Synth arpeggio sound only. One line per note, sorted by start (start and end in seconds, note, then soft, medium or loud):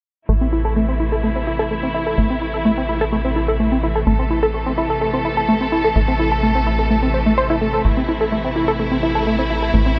0.29 0.33 A3 medium
0.41 0.47 C4 medium
0.53 0.62 E4 medium
0.65 0.74 A4 medium
0.76 0.86 A3 medium
0.89 0.94 C4 medium
1.00 1.04 E4 medium
1.12 1.16 A4 medium
1.23 1.30 A3 medium
1.36 1.41 C4 medium
1.47 1.56 E4 medium
1.59 1.63 A4 loud
1.71 1.74 A3 medium
1.83 1.89 C4 medium
1.94 2.04 E4 medium
2.07 2.15 A4 medium
2.18 2.27 A3 medium
2.30 2.36 C4 medium
2.42 2.45 E4 medium
2.54 2.57 A4 medium
2.65 2.71 A3 medium
2.78 2.83 C4 medium
2.89 2.98 E4 medium
3.01 3.05 A4 loud
3.12 3.16 A3 medium
3.25 3.30 C4 medium
3.36 3.45 E4 medium
3.48 3.57 A4 medium
3.60 3.69 A3 medium
3.72 3.78 C4 medium
3.83 3.87 E4 medium
3.96 3.99 A4 medium
4.07 4.13 A3 medium
4.19 4.25 C4 medium
4.31 4.40 E4 medium
4.43 4.46 A4 loud
4.54 4.58 A3 medium
4.66 4.72 C4 medium
4.78 4.87 E4 medium
4.90 4.99 A4 medium
5.01 5.11 A3 medium
5.14 5.19 C4 medium
5.25 5.29 E4 medium
5.37 5.41 A4 medium
5.49 5.55 A3 medium
5.61 5.67 C4 medium
5.72 5.82 E4 medium
5.84 5.88 A4 loud
5.96 6.00 A3 medium
6.08 6.14 C4 medium
6.19 6.29 E4 medium
6.32 6.40 A4 medium
6.43 6.52 A3 medium
6.55 6.61 C4 medium
6.67 6.70 E4 medium
6.79 6.82 A4 medium
6.90 6.97 A3 medium
7.03 7.08 C4 medium
7.14 7.20 C5 medium
7.26 7.32 A3 medium
7.38 7.47 C5 loud
7.50 7.56 E4 medium
7.61 7.68 A3 medium
7.74 7.82 A4 medium
7.85 7.94 A3 medium
7.97 8.03 C4 medium
8.09 8.12 E4 medium
8.21 8.24 A4 medium
8.32 8.38 A3 medium
8.44 8.50 C4 medium
8.56 8.65 E4 medium
8.68 8.71 A4 loud
8.79 8.83 A3 medium
8.92 8.97 C4 medium
9.03 9.12 E4 medium
9.15 9.24 A4 medium
9.27 9.36 A3 medium
9.39 9.45 C4 medium
9.50 9.54 E4 medium
9.62 9.66 A4 medium
9.74 9.80 A3 medium
9.86 9.92 C4 medium